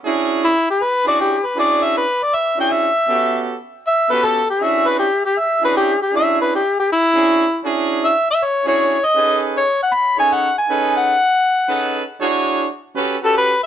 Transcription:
X:1
M:4/4
L:1/8
Q:"Swing" 1/4=158
K:Emix
V:1 name="Harmonica"
z2 E =G B d G B | d e B d e =g e2- | e2 z2 e B A =G | e B =G G e B G G |
e B =G G E4 | z2 e e c c2 ^d- | ^d z c f b g f g- | g f6 z |
z4 z A B e |]
V:2 name="Horn section"
[CDEFG]2 z3 [CDEFG]2 z | [CDEFG]2 z3 [CDEFG]2 z | [B,CF=GA]2 z3 [B,CFGA]2 z | [CDEFG]2 z3 [CDEFG]2 z |
[CDEFG]2 z3 [CDEFG]2 z | [CDEFG]2 z3 [CDEFG]2 z | [C^DGAB]2 z3 [CDGAc]2 z | [C^DGAB]2 z3 [CDGAB]2 z |
[DEFGc]2 z2 [CF=GAB] [CFGAB]2 z |]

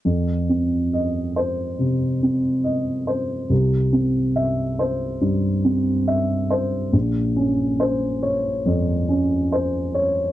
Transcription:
X:1
M:4/4
L:1/8
Q:1/4=70
K:Cphr
V:1 name="Grand piano"
F,, C e c C, C e c | C,, C =e c G,, C e c | B,,, D c d F,, D c d |]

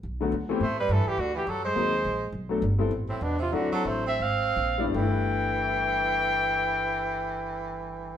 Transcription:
X:1
M:4/4
L:1/16
Q:"Swing" 1/4=190
K:G
V:1 name="Trumpet"
z8 c2 B2 A2 G2 | F2 G2 A2 c8- c2 | z8 z2 C2 D2 =F2 | F2 A2 c2 e2 =f6- f z |
g16- | g16 |]
V:2 name="Grand piano"
z2 [D,F,A,B,F]2 z2 [E,A,B,CG]2 z8 | z8 [_G,_B,C_E_A]2 z6 | z2 [F,A,B,DA]2 z2 [G,B,CEA]2 z8 | [F,CDEA]6 z8 [G,B,DEd]2 |
[G,,G,A,EB]16- | [G,,G,A,EB]16 |]
V:3 name="Tenor saxophone" clef=bass
z8 A,2 G,2 E,2 E,2 | D,2 E,2 F,2 _A,8- A,2 | z8 z2 A,,2 B,,2 C,2 | D,2 F,2 A,2 C2 C6- C z |
E,16- | E,16 |]
V:4 name="Upright bass" clef=bass
B,,,4 D,,4 A,,4 G,,2 z2 | D,,4 F,,4 _E,,4 _B,,,4 | B,,,4 G,,,4 A,,,4 E,,4 | D,,2 z2 A,,,4 _A,,,4 _B,,,4 |
G,,,16- | G,,,16 |]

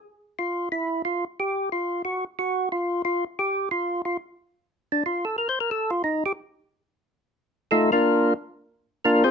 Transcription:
X:1
M:4/4
L:1/8
Q:"Swing" 1/4=180
K:Bb
V:1 name="Tonewheel organ"
z2 F2 =E2 F z | G2 F2 _G z G2 | F2 F z G2 F2 | F z4 D F A |
(3B c B A F E G z2 | z6 [A,EFA] [B,DFB]- | [B,DFB]2 z4 [B,DFB] [CF_Ac] |]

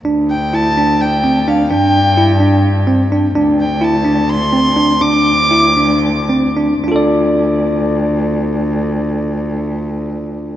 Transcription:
X:1
M:7/8
L:1/8
Q:1/4=122
K:Dm
V:1 name="Violin"
z g a2 g2 f | g4 z3 | z g a2 c'3 | d'4- d' z2 |
z6 z | z6 z |]
V:2 name="Tine electric piano"
D2 E D2 C D | D2 E D2 C D | D2 E D2 C D | D2 E D2 C D |
[DFAd]6- [DFAd]- | [DFAd]6- [DFAd] |]
V:3 name="Cello" clef=bass
D,,6- D,, | G,,6- G,, | D,,6- D,, | D,,6- D,, |
D,,6- D,,- | D,,6- D,, |]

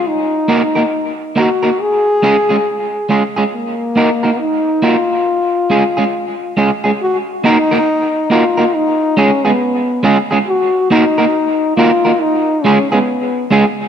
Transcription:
X:1
M:4/4
L:1/16
Q:"Swing 16ths" 1/4=69
K:Ebm
V:1 name="Clean electric guitar"
z2 [B,EGB] [B,EGB] z2 [B,EGB] [B,EGB] z2 [A,DFA] [A,DFA] z2 [A,DFA] [A,DFA] | z2 [B,EGB] [B,EGB] z2 [B,EGB] z3 [A,DFA] [A,DFA] z2 [A,DFA] [A,DFA] | z2 [B,EGB] [B,EGB] z2 [B,EGB] [B,EGB] z2 [A,DFA] [A,DFA] z2 [A,DFA] [A,DFA] | z2 [B,EGB] [B,EGB] z2 [B,EGB] [B,EGB] z2 [A,DFA] [A,DFA] z2 [A,DFA] z |]
V:2 name="Trombone"
E4- E z G2 A6 z2 | B,4 E2 F8 z2 | G2 E4 F2 E2 D C3 z2 | G2 E4 F2 E2 D C3 z2 |]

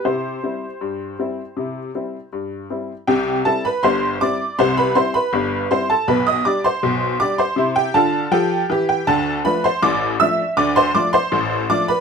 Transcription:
X:1
M:2/4
L:1/16
Q:1/4=80
K:C
V:1 name="Honky-tonk piano"
[Gc]8- | [Gc]4 z4 | [Gg]2 [Aa] [Bb] [cc']2 [dd']2 | [cc'] [Bb] [cc'] [Bb]3 [cc'] [Aa] |
[Bb] [_e_e'] [dd'] [cc']3 [dd'] [cc']- | [cc'] [Gg] [Aa]2 [Gg]3 [Gg] | [Aa]2 [Bb] [cc'] [dd']2 [ee']2 | [dd'] [cc'] [dd'] [cc']3 [dd'] [Bb] |]
V:2 name="Honky-tonk piano" clef=bass
[C,E]2 [G,CE]2 G,,2 [G,CE]2 | [C,E]2 [G,CE]2 G,,2 [G,CE]2 | [C,,C,]2 [G,CE]2 [G,,,G,,]2 [G,CE]2 | [C,,C,]2 [G,CE]2 [G,,,G,,]2 [G,CE]2 |
[B,,,B,,]2 [G,DG]2 [B,,,B,,]2 [G,DG]2 | [C,E]2 [D,F]2 [F,A]2 [E,G]2 | [D,,D,]2 [F,A,D]2 [A,,,A,,]2 [F,A,D]2 | [D,,D,]2 [F,A,D]2 [A,,,A,,]2 [F,A,D]2 |]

